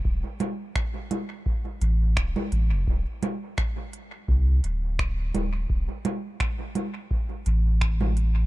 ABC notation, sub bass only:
X:1
M:4/4
L:1/16
Q:"Swing 16ths" 1/4=85
K:Dm
V:1 name="Sub bass" clef=bass
D,,, z8 z A,,,2 D,,, z A,,, F,,, | D,,, z6 z C,,2 D,,,4 D,,,2 | D,,, z8 z A,,,6 |]